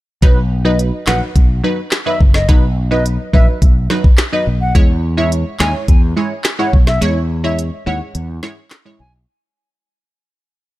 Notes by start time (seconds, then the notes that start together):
0.22 B1 F#3 D#4 B4, kick, closed hi-hat
0.65 F#3 D#4 B4 D#5
0.79 closed hi-hat
1.07 A#1 F#3 D#4 B4 F#5, snare, clap
1.36 B1, kick, closed hi-hat
1.64 F#3 D#4 B4
1.91 cross-stick, snare, clap, closed hi-hat
2.06 F#3 D#4 B4 E5
2.21 F#1, kick
2.34 D#5, snare
2.49 B1 F#3 D#4 B4, kick, closed hi-hat
2.91 F#3 D#4 B4 D#5
3.06 closed hi-hat
3.33 A#1 F#3 D#4 B4 E5, kick
3.62 B1, kick, closed hi-hat
3.90 F#3 D#4 B4, snare
4.04 kick
4.18 cross-stick, snare, clap, closed hi-hat
4.33 F#3 D#4 B4 D#5
4.47 B1
4.61 F#5
4.75 E2 G#3 E4 C#5, kick, closed hi-hat
5.17 G#3 E4 C#5 E5
5.32 closed hi-hat
5.59 D#2 G#3 E4 C#5 G#5, snare, clap
5.88 E2, kick, closed hi-hat
6.16 G#3 E4 C#5
6.44 cross-stick, snare, clap, closed hi-hat
6.59 G#3 E4 C#5 F#5
6.73 B1, kick
6.87 E5, snare
7.01 E2 G#3 E4 C#5, closed hi-hat
7.44 G#3 E4 C#5 E5
7.59 closed hi-hat
7.86 D#2 G#3 E4 C#5 F#5
8.15 E2, closed hi-hat
8.43 G#3 E4 C#5, snare
8.70 cross-stick, snare, clap, closed hi-hat
8.85 G#3 E4 C#5
9.00 B1 G#5